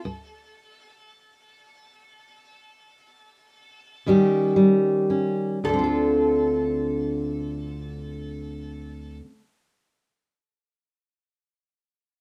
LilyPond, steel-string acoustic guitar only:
\new Staff \with { instrumentName = "Steel-string acoustic guitar" } { \clef bass \time 12/8 \key d \minor \tempo 4. = 36 << { r1 r8 <ees g des' g'>8 g8 des'8 | <d c' f' a'>1. | } \\ { d,4 r2. r8 ees,4 r8 | d,1. | } >> }